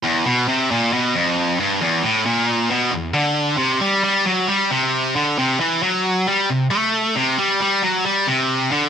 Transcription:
\new Staff \with { instrumentName = "Distorted electric guitar" } { \clef bass \time 4/4 \key e \minor \tempo 4 = 135 e,8 b,8 c8 ais,8 b,8 f,4 g,8 | e,8 a,8 ais,4 b,8 e,8 d4 | c8 g8 g8 fis8 g8 c4 d8 | c8 e8 fis4 g8 c8 a4 |
c8 g8 g8 fis8 g8 c4 d8 | }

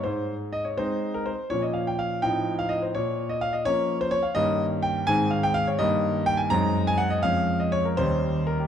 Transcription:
<<
  \new Staff \with { instrumentName = "Grand piano" } { \time 6/8 \key aes \major \tempo 4. = 83 c''4 ees''16 des''16 c''8. bes'16 c''8 | des''16 ees''16 f''16 g''16 f''8 g''8. f''16 ees''16 c''16 | des''8. ees''16 f''16 ees''16 des''8. c''16 des''16 f''16 | ees''4 g''8 aes''8 f''16 g''16 f''16 des''16 |
ees''4 g''16 aes''16 bes''8. aes''16 ges''16 ees''16 | f''8. ees''16 des''16 bes'16 c''4 bes'16 g'16 | }
  \new Staff \with { instrumentName = "Grand piano" } { \clef bass \time 6/8 \key aes \major aes,4. <aes c' ees'>4. | <bes, f des'>4. <a, f c' ees'>4. | bes,4. <f bes des'>4. | <g, ees bes des'>4. <aes, ees aes c'>4. |
<g, ees bes ees'>4. <ges, aes c' ees'>4. | <f, aes des'>4. <ees, g des' ees'>4. | }
>>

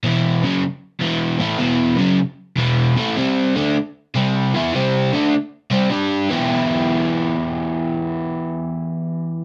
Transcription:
\new Staff \with { instrumentName = "Overdriven electric guitar" } { \clef bass \time 4/4 \key e \minor \tempo 4 = 153 <e, b, e>4 <fis, cis fis>8 r4 <e, b, e>4 <a, e a>8 | <e, b, e>4 <fis, cis fis>8 r4 <e, b, e>4 <a, e a>8 | <c g c'>4 <d a d'>8 r4 <c g c'>4 <e b e'>8 | <c g c'>4 <d a d'>8 r4 <c g c'>8 <g d' g'>4 |
<e b e' g'>1~ | <e b e' g'>1 | }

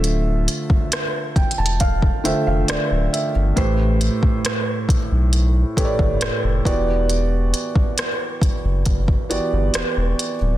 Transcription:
<<
  \new Staff \with { instrumentName = "Felt piano" } { \time 4/4 \key a \minor \tempo 4 = 68 << { r4. g''16 a''16 f''8 g''16 f''16 d''8 e''8 | r1 | r1 | } \\ { <d a f' c'' e''>4 r4. <d a f' c'' e''>4 r8 | <a, a g' b' c''>4. r4 <a, a g' b' cis'' d''>4 <e b fis' g' d''>8~ | <e b fis' g' d''>4 r4. <e b fis' g' d''>4 r8 | } >> }
  \new Staff \with { instrumentName = "Sub bass" } { \clef bass \time 4/4 \key a \minor d,,8. e,,16 r8 e,,16 e,,8. f,,16 f,,16 d,,16 d,,16 r16 g,,16 | a,,8. b,,16 r8 b,,16 b,,8. g,,16 g,,16 f,,16 f,,16 e,,8~ | e,,8. fis,,16 r8 fis,,16 fis,,8. g,,16 g,,16 e,,16 e,,16 r16 d,,16 | }
  \new DrumStaff \with { instrumentName = "Drums" } \drummode { \time 4/4 hh8 hh16 bd16 \tuplet 3/2 { <hh ss>16 r16 r16 <hh bd>16 hh16 hh16 } <hh bd>16 bd16 hh8 <hh ss>8 hh8 | <hh bd>8 hh16 bd16 <hh ss>8 <hh bd>8 hh8 <hh bd>16 bd16 <hh ss>8 <hh bd>8 | hh8 hh16 bd16 <hh ss>8 <hh bd>8 <hh bd>16 bd16 hh8 <hh ss>8 hh8 | }
>>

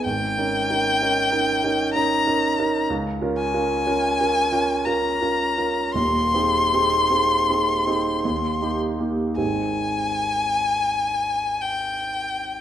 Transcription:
<<
  \new Staff \with { instrumentName = "Violin" } { \time 3/4 \key dis \phrygian \tempo 4 = 56 g''2 ais''4 | \key aes \major r8 aes''4. bes''4 | c'''2~ c'''8 r8 | aes''2 g''4 | }
  \new Staff \with { instrumentName = "Grand piano" } { \time 3/4 \key dis \phrygian \tuplet 3/2 { gis,,8 <cis' dis' ais'>8 <cis' dis' ais'>8 <cis' dis' ais'>8 <cis' dis' ais'>8 <cis' dis' ais'>8 <cis' dis' ais'>8 <cis' dis' ais'>8 <cis' dis' ais'>8 } | \key aes \major \tuplet 3/2 { des,8 <des' f' bes'>8 <des' f' bes'>8 <des' f' bes'>8 <des' f' bes'>8 <des' f' bes'>8 <des' f' bes'>8 <des' f' bes'>8 <des' f' bes'>8 } | \tuplet 3/2 { <ees,, ees,>8 <c' ees' aes'>8 <c' ees' aes'>8 <c' ees' aes'>8 <c' ees' aes'>8 <c' ees' aes'>8 ees,8 <bes ees' g'>8 <bes ees' g'>8 } | <aes,, c' ees' aes'>2. | }
>>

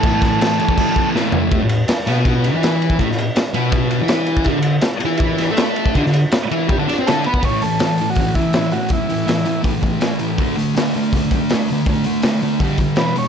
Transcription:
<<
  \new Staff \with { instrumentName = "Transistor combo organ" } { \time 4/4 \key d \major \tempo 4 = 162 a'2. r4 | r1 | r1 | r1 |
r2. a'8 b'8 | cis''8 a'4~ a'16 fis'8. e'4 fis'8 | e'2 r2 | r1 |
r2. b'8 cis''8 | }
  \new Staff \with { instrumentName = "Distorted electric guitar" } { \clef bass \time 4/4 \key d \major <a, e a>4 <a, e a>8 <a, e a>8 <a, e a>4 <a, e a>8 <a, e a>8 | <a, a>16 a,8 r8. <b, b>4~ <b, b>16 <e e'>4~ <e e'>16 | <a, a>16 a,8 r8. <b, b>4~ <b, b>16 <e e'>4~ <e e'>16 | <d d'>16 d8 r8. <e e'>4~ <e e'>16 <a a'>4~ <a a'>16 |
<d d'>16 d8 r8. <e e'>8 <g g'>16 <d d'>16 <d' d''>16 <c' c''>16 <d d'>8 <b b'>8 | <a, e a>8 <a, e>8 <a, e>8 <a, e>8 <a, e>8 <a, e>8 <a, e>8 <a, e>8 | <a, e>8 <a, e>8 <a, e>8 <a, e>8 <a, e>8 <a, e>8 <a, e>8 <a, e>8 | <d a d'>8 <d a>8 <d a>8 <d a>8 <d a>8 <d a>8 <d a>8 <d a>8 |
<d a>8 <d a>8 <d a>8 <d a>8 <g, d g>8 <g, d>8 <e, b, e>8 <e, b,>8 | }
  \new DrumStaff \with { instrumentName = "Drums" } \drummode { \time 4/4 <cymc bd>8 <cymc bd sn>8 <cymc sn>8 cymc16 bd16 <cymc bd>8 <cymc bd>8 sn8 tomfh8 | <bd cymr>8 cymr8 <cymr sn>8 cymr8 <bd cymr>8 cymr8 <cymr sn>8 cymr16 bd16 | <bd cymr>16 sn16 cymr8 <cymr sn>8 cymr8 <bd cymr>8 cymr8 <cymr sn>8 cymr16 bd16 | <bd cymr>8 cymr8 <cymr sn>8 cymr8 <bd cymr>8 <cymr sn>8 <cymr sn>8 cymr16 bd16 |
<bd cymr>16 sn16 cymr8 <cymr sn>8 cymr8 <bd cymr>8 <cymr sn>8 <cymr sn>8 cymr16 bd16 | <hho bd>8 hho8 <hho sn>8 hho8 <hho bd>8 <hho bd>8 <hho sn>8 hho8 | <hho bd>8 hho8 <hho sn>8 hho8 <hho bd>8 <hho bd>8 <hho sn>8 hho8 | <hho bd>8 hho8 <hho sn>8 hho8 <hho bd>8 <hho bd>8 <hho sn>8 hho8 |
<hho bd>8 hho8 <hho sn>8 hho8 <hho bd>8 <hho bd>8 <hho sn>8 hho8 | }
>>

